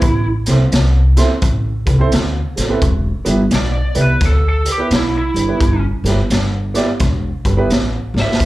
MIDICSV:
0, 0, Header, 1, 5, 480
1, 0, Start_track
1, 0, Key_signature, 1, "minor"
1, 0, Tempo, 698731
1, 13, Time_signature, 4, 2, 24, 8
1, 5807, End_track
2, 0, Start_track
2, 0, Title_t, "Lead electric guitar"
2, 0, Program_c, 0, 29
2, 0, Note_on_c, 0, 64, 86
2, 176, Note_off_c, 0, 64, 0
2, 2444, Note_on_c, 0, 74, 98
2, 2739, Note_off_c, 0, 74, 0
2, 2764, Note_on_c, 0, 71, 82
2, 2905, Note_off_c, 0, 71, 0
2, 2926, Note_on_c, 0, 69, 82
2, 3066, Note_off_c, 0, 69, 0
2, 3085, Note_on_c, 0, 69, 84
2, 3225, Note_off_c, 0, 69, 0
2, 3243, Note_on_c, 0, 67, 80
2, 3384, Note_off_c, 0, 67, 0
2, 3405, Note_on_c, 0, 64, 85
2, 3545, Note_off_c, 0, 64, 0
2, 3559, Note_on_c, 0, 64, 94
2, 4012, Note_off_c, 0, 64, 0
2, 5642, Note_on_c, 0, 76, 86
2, 5784, Note_off_c, 0, 76, 0
2, 5807, End_track
3, 0, Start_track
3, 0, Title_t, "Upright piano"
3, 0, Program_c, 1, 0
3, 323, Note_on_c, 1, 60, 67
3, 328, Note_on_c, 1, 64, 61
3, 331, Note_on_c, 1, 69, 54
3, 338, Note_on_c, 1, 72, 78
3, 408, Note_off_c, 1, 60, 0
3, 410, Note_off_c, 1, 64, 0
3, 412, Note_off_c, 1, 69, 0
3, 415, Note_off_c, 1, 72, 0
3, 801, Note_on_c, 1, 60, 81
3, 804, Note_on_c, 1, 64, 82
3, 806, Note_on_c, 1, 69, 72
3, 810, Note_on_c, 1, 72, 83
3, 887, Note_off_c, 1, 60, 0
3, 888, Note_off_c, 1, 64, 0
3, 890, Note_off_c, 1, 69, 0
3, 892, Note_off_c, 1, 72, 0
3, 1275, Note_on_c, 1, 69, 51
3, 1289, Note_on_c, 1, 71, 55
3, 1321, Note_off_c, 1, 69, 0
3, 1328, Note_off_c, 1, 71, 0
3, 1365, Note_on_c, 1, 60, 83
3, 1369, Note_on_c, 1, 64, 79
3, 1375, Note_on_c, 1, 69, 79
3, 1380, Note_on_c, 1, 72, 91
3, 1453, Note_off_c, 1, 60, 0
3, 1455, Note_off_c, 1, 64, 0
3, 1457, Note_off_c, 1, 69, 0
3, 1460, Note_off_c, 1, 72, 0
3, 1759, Note_on_c, 1, 69, 49
3, 1771, Note_on_c, 1, 72, 53
3, 1802, Note_off_c, 1, 69, 0
3, 1808, Note_off_c, 1, 72, 0
3, 1845, Note_on_c, 1, 60, 73
3, 1853, Note_on_c, 1, 64, 73
3, 1856, Note_on_c, 1, 69, 68
3, 1859, Note_on_c, 1, 71, 79
3, 1933, Note_off_c, 1, 60, 0
3, 1937, Note_off_c, 1, 64, 0
3, 1938, Note_off_c, 1, 69, 0
3, 1940, Note_off_c, 1, 71, 0
3, 2231, Note_on_c, 1, 59, 84
3, 2242, Note_on_c, 1, 64, 70
3, 2246, Note_on_c, 1, 67, 72
3, 2246, Note_on_c, 1, 71, 79
3, 2322, Note_off_c, 1, 59, 0
3, 2328, Note_off_c, 1, 64, 0
3, 2330, Note_off_c, 1, 67, 0
3, 2330, Note_off_c, 1, 71, 0
3, 2713, Note_on_c, 1, 59, 73
3, 2713, Note_on_c, 1, 64, 68
3, 2717, Note_on_c, 1, 67, 62
3, 2724, Note_on_c, 1, 71, 77
3, 2803, Note_off_c, 1, 59, 0
3, 2803, Note_off_c, 1, 64, 0
3, 2805, Note_off_c, 1, 67, 0
3, 2809, Note_off_c, 1, 71, 0
3, 3192, Note_on_c, 1, 67, 44
3, 3207, Note_on_c, 1, 71, 52
3, 3239, Note_off_c, 1, 67, 0
3, 3247, Note_off_c, 1, 71, 0
3, 3283, Note_on_c, 1, 59, 69
3, 3288, Note_on_c, 1, 64, 64
3, 3289, Note_on_c, 1, 67, 67
3, 3295, Note_on_c, 1, 71, 80
3, 3372, Note_off_c, 1, 59, 0
3, 3374, Note_off_c, 1, 64, 0
3, 3375, Note_off_c, 1, 67, 0
3, 3378, Note_off_c, 1, 71, 0
3, 3672, Note_on_c, 1, 67, 43
3, 3684, Note_on_c, 1, 71, 46
3, 3719, Note_off_c, 1, 67, 0
3, 3725, Note_off_c, 1, 71, 0
3, 3755, Note_on_c, 1, 59, 60
3, 3755, Note_on_c, 1, 64, 55
3, 3765, Note_on_c, 1, 67, 55
3, 3769, Note_on_c, 1, 71, 66
3, 3848, Note_off_c, 1, 59, 0
3, 3848, Note_off_c, 1, 64, 0
3, 3853, Note_off_c, 1, 67, 0
3, 3855, Note_off_c, 1, 71, 0
3, 4154, Note_on_c, 1, 59, 69
3, 4157, Note_on_c, 1, 64, 59
3, 4159, Note_on_c, 1, 67, 62
3, 4164, Note_on_c, 1, 71, 74
3, 4244, Note_off_c, 1, 59, 0
3, 4246, Note_off_c, 1, 64, 0
3, 4246, Note_off_c, 1, 67, 0
3, 4249, Note_off_c, 1, 71, 0
3, 4631, Note_on_c, 1, 59, 85
3, 4634, Note_on_c, 1, 64, 79
3, 4643, Note_on_c, 1, 74, 91
3, 4644, Note_on_c, 1, 67, 72
3, 4723, Note_off_c, 1, 59, 0
3, 4724, Note_off_c, 1, 64, 0
3, 4728, Note_off_c, 1, 74, 0
3, 4729, Note_off_c, 1, 67, 0
3, 5121, Note_on_c, 1, 67, 49
3, 5134, Note_on_c, 1, 71, 60
3, 5164, Note_off_c, 1, 67, 0
3, 5170, Note_off_c, 1, 71, 0
3, 5201, Note_on_c, 1, 59, 80
3, 5202, Note_on_c, 1, 64, 76
3, 5205, Note_on_c, 1, 67, 78
3, 5209, Note_on_c, 1, 71, 91
3, 5291, Note_off_c, 1, 59, 0
3, 5292, Note_off_c, 1, 64, 0
3, 5293, Note_off_c, 1, 67, 0
3, 5295, Note_off_c, 1, 71, 0
3, 5589, Note_on_c, 1, 67, 39
3, 5605, Note_on_c, 1, 74, 44
3, 5638, Note_off_c, 1, 67, 0
3, 5646, Note_off_c, 1, 74, 0
3, 5685, Note_on_c, 1, 59, 57
3, 5692, Note_on_c, 1, 64, 55
3, 5695, Note_on_c, 1, 67, 52
3, 5700, Note_on_c, 1, 71, 62
3, 5773, Note_off_c, 1, 59, 0
3, 5777, Note_off_c, 1, 64, 0
3, 5778, Note_off_c, 1, 67, 0
3, 5781, Note_off_c, 1, 71, 0
3, 5807, End_track
4, 0, Start_track
4, 0, Title_t, "Upright bass"
4, 0, Program_c, 2, 32
4, 14, Note_on_c, 2, 33, 87
4, 209, Note_off_c, 2, 33, 0
4, 323, Note_on_c, 2, 36, 89
4, 433, Note_off_c, 2, 36, 0
4, 497, Note_on_c, 2, 36, 83
4, 803, Note_off_c, 2, 36, 0
4, 976, Note_on_c, 2, 33, 87
4, 1171, Note_off_c, 2, 33, 0
4, 1284, Note_on_c, 2, 36, 97
4, 1394, Note_off_c, 2, 36, 0
4, 1456, Note_on_c, 2, 38, 88
4, 1650, Note_off_c, 2, 38, 0
4, 1768, Note_on_c, 2, 33, 86
4, 1877, Note_off_c, 2, 33, 0
4, 1938, Note_on_c, 2, 28, 94
4, 2132, Note_off_c, 2, 28, 0
4, 2241, Note_on_c, 2, 31, 92
4, 2352, Note_off_c, 2, 31, 0
4, 2410, Note_on_c, 2, 35, 93
4, 2607, Note_off_c, 2, 35, 0
4, 2717, Note_on_c, 2, 36, 85
4, 2830, Note_off_c, 2, 36, 0
4, 2889, Note_on_c, 2, 38, 92
4, 3198, Note_off_c, 2, 38, 0
4, 3371, Note_on_c, 2, 35, 82
4, 3568, Note_off_c, 2, 35, 0
4, 3670, Note_on_c, 2, 31, 84
4, 3785, Note_off_c, 2, 31, 0
4, 3849, Note_on_c, 2, 31, 90
4, 4046, Note_off_c, 2, 31, 0
4, 4148, Note_on_c, 2, 31, 90
4, 4263, Note_off_c, 2, 31, 0
4, 4328, Note_on_c, 2, 31, 87
4, 4637, Note_off_c, 2, 31, 0
4, 4811, Note_on_c, 2, 28, 93
4, 5008, Note_off_c, 2, 28, 0
4, 5117, Note_on_c, 2, 31, 87
4, 5230, Note_off_c, 2, 31, 0
4, 5287, Note_on_c, 2, 33, 80
4, 5485, Note_off_c, 2, 33, 0
4, 5591, Note_on_c, 2, 32, 85
4, 5706, Note_off_c, 2, 32, 0
4, 5771, Note_on_c, 2, 33, 91
4, 5807, Note_off_c, 2, 33, 0
4, 5807, End_track
5, 0, Start_track
5, 0, Title_t, "Drums"
5, 10, Note_on_c, 9, 42, 78
5, 14, Note_on_c, 9, 36, 104
5, 79, Note_off_c, 9, 42, 0
5, 83, Note_off_c, 9, 36, 0
5, 316, Note_on_c, 9, 42, 54
5, 329, Note_on_c, 9, 38, 31
5, 385, Note_off_c, 9, 42, 0
5, 397, Note_off_c, 9, 38, 0
5, 495, Note_on_c, 9, 42, 85
5, 507, Note_on_c, 9, 38, 103
5, 563, Note_off_c, 9, 42, 0
5, 576, Note_off_c, 9, 38, 0
5, 802, Note_on_c, 9, 42, 65
5, 815, Note_on_c, 9, 38, 31
5, 871, Note_off_c, 9, 42, 0
5, 883, Note_off_c, 9, 38, 0
5, 974, Note_on_c, 9, 42, 81
5, 976, Note_on_c, 9, 36, 104
5, 1042, Note_off_c, 9, 42, 0
5, 1045, Note_off_c, 9, 36, 0
5, 1282, Note_on_c, 9, 42, 64
5, 1283, Note_on_c, 9, 36, 81
5, 1351, Note_off_c, 9, 36, 0
5, 1351, Note_off_c, 9, 42, 0
5, 1455, Note_on_c, 9, 42, 83
5, 1467, Note_on_c, 9, 38, 96
5, 1524, Note_off_c, 9, 42, 0
5, 1536, Note_off_c, 9, 38, 0
5, 1767, Note_on_c, 9, 42, 68
5, 1780, Note_on_c, 9, 38, 32
5, 1836, Note_off_c, 9, 42, 0
5, 1848, Note_off_c, 9, 38, 0
5, 1934, Note_on_c, 9, 42, 86
5, 1936, Note_on_c, 9, 36, 104
5, 2003, Note_off_c, 9, 42, 0
5, 2005, Note_off_c, 9, 36, 0
5, 2236, Note_on_c, 9, 42, 64
5, 2305, Note_off_c, 9, 42, 0
5, 2410, Note_on_c, 9, 42, 89
5, 2422, Note_on_c, 9, 38, 106
5, 2478, Note_off_c, 9, 42, 0
5, 2491, Note_off_c, 9, 38, 0
5, 2712, Note_on_c, 9, 42, 62
5, 2781, Note_off_c, 9, 42, 0
5, 2890, Note_on_c, 9, 42, 83
5, 2892, Note_on_c, 9, 36, 100
5, 2902, Note_on_c, 9, 38, 31
5, 2958, Note_off_c, 9, 42, 0
5, 2960, Note_off_c, 9, 36, 0
5, 2971, Note_off_c, 9, 38, 0
5, 3198, Note_on_c, 9, 42, 54
5, 3266, Note_off_c, 9, 42, 0
5, 3371, Note_on_c, 9, 42, 72
5, 3383, Note_on_c, 9, 38, 101
5, 3440, Note_off_c, 9, 42, 0
5, 3452, Note_off_c, 9, 38, 0
5, 3681, Note_on_c, 9, 42, 57
5, 3750, Note_off_c, 9, 42, 0
5, 3851, Note_on_c, 9, 36, 102
5, 3851, Note_on_c, 9, 42, 82
5, 3919, Note_off_c, 9, 36, 0
5, 3920, Note_off_c, 9, 42, 0
5, 4159, Note_on_c, 9, 42, 58
5, 4171, Note_on_c, 9, 38, 33
5, 4227, Note_off_c, 9, 42, 0
5, 4240, Note_off_c, 9, 38, 0
5, 4330, Note_on_c, 9, 42, 80
5, 4343, Note_on_c, 9, 38, 106
5, 4399, Note_off_c, 9, 42, 0
5, 4411, Note_off_c, 9, 38, 0
5, 4635, Note_on_c, 9, 42, 61
5, 4648, Note_on_c, 9, 38, 33
5, 4704, Note_off_c, 9, 42, 0
5, 4716, Note_off_c, 9, 38, 0
5, 4806, Note_on_c, 9, 42, 78
5, 4811, Note_on_c, 9, 36, 104
5, 4818, Note_on_c, 9, 38, 29
5, 4875, Note_off_c, 9, 42, 0
5, 4880, Note_off_c, 9, 36, 0
5, 4887, Note_off_c, 9, 38, 0
5, 5118, Note_on_c, 9, 36, 76
5, 5118, Note_on_c, 9, 42, 61
5, 5187, Note_off_c, 9, 36, 0
5, 5187, Note_off_c, 9, 42, 0
5, 5292, Note_on_c, 9, 42, 78
5, 5304, Note_on_c, 9, 38, 99
5, 5360, Note_off_c, 9, 42, 0
5, 5373, Note_off_c, 9, 38, 0
5, 5610, Note_on_c, 9, 38, 59
5, 5678, Note_off_c, 9, 38, 0
5, 5728, Note_on_c, 9, 38, 81
5, 5772, Note_on_c, 9, 36, 97
5, 5773, Note_on_c, 9, 42, 88
5, 5797, Note_off_c, 9, 38, 0
5, 5807, Note_off_c, 9, 36, 0
5, 5807, Note_off_c, 9, 42, 0
5, 5807, End_track
0, 0, End_of_file